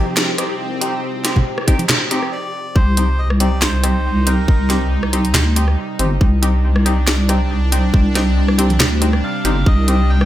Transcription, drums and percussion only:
0.17 snare, clap
0.38 cross-stick, closed hi-hat
0.81 closed hi-hat
1.25 snare, closed hi-hat
1.36 kick, low conga
1.58 cross-stick
1.68 kick, closed hi-hat
1.79 closed hi-hat, high conga
1.89 snare, clap, low conga
2.11 closed hi-hat
2.22 cross-stick
2.76 kick
2.97 closed hi-hat
3.30 cross-stick
3.40 closed hi-hat
3.62 snare, clap
3.84 cross-stick, closed hi-hat
4.27 closed hi-hat
4.48 kick
4.70 snare, closed hi-hat
5.03 cross-stick
5.13 closed hi-hat
5.25 closed hi-hat
5.34 snare, clap, low conga
5.56 closed hi-hat
5.68 cross-stick
5.99 closed hi-hat
6.21 kick
6.43 closed hi-hat
6.76 cross-stick
6.86 closed hi-hat
7.07 snare, clap
7.29 cross-stick, closed hi-hat
7.72 closed hi-hat
7.94 kick
8.15 snare, closed hi-hat
8.48 cross-stick
8.59 closed hi-hat
8.70 closed hi-hat, high conga
8.80 snare, clap, low conga
9.02 closed hi-hat
9.13 cross-stick
9.45 closed hi-hat
9.66 kick
9.88 closed hi-hat
10.21 cross-stick

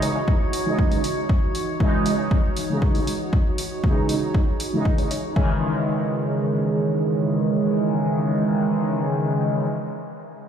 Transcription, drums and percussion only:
0.02 open hi-hat
0.28 kick
0.53 open hi-hat
0.79 kick
0.92 open hi-hat
1.04 open hi-hat
1.29 kick
1.55 open hi-hat
1.80 kick
2.06 open hi-hat
2.31 kick
2.57 open hi-hat
2.82 kick
2.95 open hi-hat
3.07 open hi-hat
3.33 kick
3.58 open hi-hat
3.84 kick
4.09 open hi-hat
4.35 kick
4.60 open hi-hat
4.85 kick
4.98 open hi-hat
5.11 open hi-hat
5.36 kick

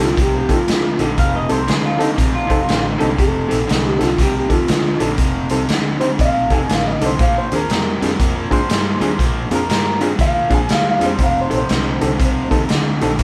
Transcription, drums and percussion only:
0.01 snare
0.17 kick, closed hi-hat
0.49 kick, closed hi-hat
0.68 snare, closed hi-hat
0.99 closed hi-hat
1.18 kick, closed hi-hat
1.49 closed hi-hat
1.68 snare, closed hi-hat
2.00 closed hi-hat
2.18 kick, closed hi-hat
2.50 kick, closed hi-hat
2.69 snare, closed hi-hat
3.00 closed hi-hat
3.18 kick, closed hi-hat
3.51 closed hi-hat
3.69 snare, closed hi-hat
4.01 snare, closed hi-hat
4.18 kick, closed hi-hat
4.50 kick, closed hi-hat
4.68 snare, closed hi-hat
5.00 closed hi-hat
5.18 kick, closed hi-hat
5.49 closed hi-hat
5.69 snare, closed hi-hat
6.01 closed hi-hat
6.19 kick, closed hi-hat
6.50 kick, closed hi-hat
6.69 snare, closed hi-hat
7.01 closed hi-hat
7.19 kick, closed hi-hat
7.52 closed hi-hat
7.70 snare, closed hi-hat
8.02 snare, closed hi-hat
8.20 kick, closed hi-hat
8.51 kick, closed hi-hat
8.70 snare, closed hi-hat
9.01 closed hi-hat
9.19 kick, closed hi-hat
9.51 closed hi-hat
9.70 snare, closed hi-hat
10.01 closed hi-hat
10.19 kick, closed hi-hat
10.50 kick, closed hi-hat
10.69 snare, closed hi-hat
11.01 closed hi-hat
11.19 kick, closed hi-hat
11.51 closed hi-hat
11.69 snare, closed hi-hat
12.01 closed hi-hat
12.20 kick, closed hi-hat
12.51 kick, closed hi-hat
12.69 snare, closed hi-hat
13.01 closed hi-hat
13.19 kick, closed hi-hat

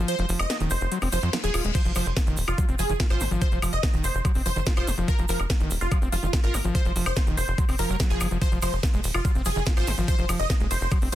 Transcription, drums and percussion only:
0.08 closed hi-hat, shaker
0.18 closed hi-hat, shaker
0.29 open hi-hat, shaker
0.39 closed hi-hat, high woodblock, shaker
0.50 snare, closed hi-hat, shaker
0.60 closed hi-hat, shaker
0.70 open hi-hat, shaker
0.81 closed hi-hat, shaker
0.92 closed hi-hat, shaker
1.01 open hi-hat, high woodblock, shaker
1.12 open hi-hat, shaker
1.22 closed hi-hat, shaker
1.33 snare, closed hi-hat, shaker
1.44 closed hi-hat, shaker
1.54 open hi-hat, high woodblock, shaker
1.64 closed hi-hat, shaker
1.75 kick, closed hi-hat, crash, shaker
1.85 closed hi-hat, shaker
1.95 open hi-hat, high woodblock, shaker
2.06 closed hi-hat, shaker
2.17 kick, snare, closed hi-hat, shaker
2.27 closed hi-hat, shaker
2.37 open hi-hat, shaker
2.48 closed hi-hat, high woodblock, shaker
2.58 kick, closed hi-hat, shaker
2.69 closed hi-hat, shaker
2.79 open hi-hat, shaker
2.89 closed hi-hat, shaker
3.00 kick, snare, closed hi-hat, shaker
3.10 closed hi-hat, high woodblock, shaker
3.20 open hi-hat, shaker
3.31 closed hi-hat, shaker
3.42 kick, closed hi-hat, shaker
3.52 closed hi-hat, shaker
3.62 open hi-hat, high woodblock, shaker
3.73 closed hi-hat, shaker
3.83 kick, snare, closed hi-hat, shaker
3.94 closed hi-hat, shaker
4.04 open hi-hat, shaker
4.14 closed hi-hat, shaker
4.25 kick, closed hi-hat, high woodblock, shaker
4.34 open hi-hat, shaker
4.46 open hi-hat, shaker
4.56 closed hi-hat, shaker
4.66 kick, snare, closed hi-hat, shaker
4.76 closed hi-hat, high woodblock, shaker
4.87 open hi-hat, shaker
4.98 closed hi-hat, shaker
5.08 kick, closed hi-hat, shaker
5.18 closed hi-hat, shaker
5.28 open hi-hat, shaker
5.40 closed hi-hat, high woodblock, shaker
5.50 kick, snare, closed hi-hat, shaker
5.60 closed hi-hat, shaker
5.70 open hi-hat, shaker
5.81 closed hi-hat, shaker
5.91 kick, closed hi-hat, high woodblock, shaker
6.02 closed hi-hat, shaker
6.12 open hi-hat, shaker
6.23 closed hi-hat, shaker
6.33 kick, snare, closed hi-hat, shaker
6.43 closed hi-hat, shaker
6.54 open hi-hat, high woodblock, shaker
6.65 closed hi-hat, shaker
6.75 kick, closed hi-hat, shaker
6.85 closed hi-hat, shaker
6.96 open hi-hat, shaker
7.06 high woodblock, shaker
7.16 kick, snare, closed hi-hat, shaker
7.27 closed hi-hat, shaker
7.37 open hi-hat, shaker
7.48 closed hi-hat, shaker
7.58 kick, closed hi-hat, shaker
7.69 open hi-hat, high woodblock, shaker
7.78 open hi-hat, shaker
7.89 closed hi-hat, shaker
8.00 kick, snare, closed hi-hat, shaker
8.10 closed hi-hat, shaker
8.20 open hi-hat, high woodblock, shaker
8.31 closed hi-hat, shaker
8.42 kick, closed hi-hat, ride, shaker
8.52 closed hi-hat, shaker
8.62 open hi-hat, ride, high woodblock, shaker
8.73 closed hi-hat, shaker
8.83 kick, snare, closed hi-hat, ride, shaker
8.94 closed hi-hat, shaker
9.04 open hi-hat, ride, shaker
9.14 high woodblock, shaker
9.25 kick, closed hi-hat, ride, shaker
9.35 closed hi-hat, shaker
9.45 open hi-hat, ride, shaker
9.56 closed hi-hat, shaker
9.66 kick, snare, closed hi-hat, ride, shaker
9.77 closed hi-hat, high woodblock, shaker
9.87 open hi-hat, ride, shaker
9.98 closed hi-hat, shaker
10.08 kick, closed hi-hat, ride, shaker
10.18 closed hi-hat, shaker
10.29 open hi-hat, ride, high woodblock, shaker
10.39 closed hi-hat, shaker
10.50 kick, snare, closed hi-hat, ride, shaker
10.60 closed hi-hat, shaker
10.71 open hi-hat, ride, shaker
10.81 closed hi-hat, shaker
10.91 kick, closed hi-hat, ride, high woodblock, shaker
11.01 open hi-hat, shaker

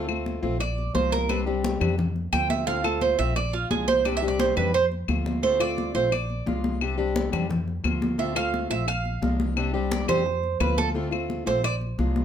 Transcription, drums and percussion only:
0.09 high conga, claves
0.26 high conga
0.43 high conga
0.61 high conga, claves
0.78 high conga
0.95 high conga
1.13 high conga
1.30 high conga, claves
1.47 high conga
1.64 high conga
1.81 high conga, low conga, claves
1.99 high conga, low conga
2.16 high conga
2.33 high conga, claves
2.50 high conga
2.67 high conga
2.84 high conga, claves
3.01 high conga
3.19 high conga
3.36 high conga, claves
3.54 high conga
3.71 high conga
3.88 high conga
4.05 high conga, claves
4.22 high conga
4.40 high conga
4.57 high conga, low conga, claves
4.75 high conga
4.92 high conga
5.08 high conga, claves
5.26 high conga
5.43 high conga
5.60 high conga, claves
5.78 high conga
5.95 high conga
6.12 high conga, claves
6.30 high conga
6.47 high conga
6.64 high conga
6.81 high conga, claves
6.99 high conga
7.16 high conga
7.33 high conga, low conga, claves
7.51 high conga, low conga
7.68 high conga
7.84 high conga, claves
8.02 high conga
8.19 high conga
8.36 high conga, claves
8.54 high conga
8.71 high conga
8.88 high conga, claves
9.05 high conga
9.23 high conga
9.40 high conga
9.57 high conga, claves
9.74 high conga
9.92 high conga
10.08 high conga, low conga, claves
10.26 high conga
10.43 high conga
10.60 high conga, claves
10.78 high conga
10.95 high conga
11.12 high conga, claves
11.30 high conga
11.47 high conga
11.64 high conga, claves
11.81 high conga
11.99 high conga
12.16 high conga

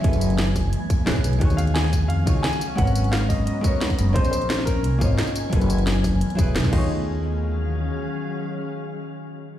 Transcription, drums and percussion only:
0.04 kick, closed hi-hat
0.13 closed hi-hat, tambourine
0.21 closed hi-hat, tambourine
0.30 closed hi-hat
0.38 snare, closed hi-hat
0.47 cross-stick
0.56 kick, open hi-hat, tambourine
0.73 closed hi-hat
0.90 kick, closed hi-hat, tambourine
1.07 snare, closed hi-hat
1.16 kick, tambourine
1.24 closed hi-hat, tambourine
1.33 closed hi-hat
1.41 kick, closed hi-hat
1.50 closed hi-hat, tambourine
1.58 closed hi-hat, tambourine
1.67 closed hi-hat
1.76 snare, closed hi-hat
1.85 cross-stick, snare
1.93 kick, closed hi-hat, tambourine
2.10 closed hi-hat
2.27 kick, closed hi-hat, tambourine
2.44 snare, closed hi-hat
2.53 tambourine
2.61 closed hi-hat, tambourine
2.78 kick, closed hi-hat
2.87 closed hi-hat, tambourine
2.95 closed hi-hat, tambourine
3.04 closed hi-hat
3.13 snare, closed hi-hat
3.21 cross-stick
3.30 kick, open hi-hat, tambourine
3.47 closed hi-hat
3.64 kick, closed hi-hat, tambourine
3.81 snare, closed hi-hat
3.90 kick, tambourine
3.99 closed hi-hat, tambourine
4.16 kick, closed hi-hat
4.25 closed hi-hat, tambourine
4.33 closed hi-hat, tambourine
4.42 closed hi-hat
4.50 snare, closed hi-hat
4.59 cross-stick, snare
4.67 kick, closed hi-hat, tambourine
4.84 closed hi-hat
5.01 kick, closed hi-hat, tambourine
5.19 snare, closed hi-hat
5.27 tambourine
5.36 closed hi-hat, tambourine
5.53 kick, closed hi-hat
5.61 closed hi-hat, tambourine
5.70 closed hi-hat, tambourine
5.78 closed hi-hat
5.87 snare, closed hi-hat
5.96 cross-stick
6.04 kick, cross-stick, open hi-hat, tambourine
6.21 closed hi-hat
6.30 closed hi-hat
6.39 kick, closed hi-hat, tambourine
6.56 snare, closed hi-hat
6.64 kick, snare, tambourine
6.73 kick, crash

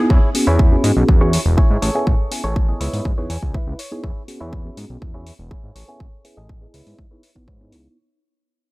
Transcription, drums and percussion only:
0.10 kick
0.35 open hi-hat
0.59 kick
0.84 open hi-hat
1.09 kick
1.33 open hi-hat
1.58 kick
1.82 open hi-hat
2.07 kick
2.32 open hi-hat
2.56 kick
2.81 open hi-hat
2.94 open hi-hat
3.05 kick
3.30 open hi-hat
3.43 kick
3.54 kick
3.79 open hi-hat
4.04 kick
4.28 open hi-hat
4.53 kick
4.77 open hi-hat
5.02 kick
5.27 open hi-hat
5.51 kick
5.76 open hi-hat
6.00 kick
6.25 open hi-hat
6.49 kick
6.74 open hi-hat
6.87 open hi-hat
6.99 kick
7.23 open hi-hat
7.36 kick
7.48 kick
7.72 open hi-hat

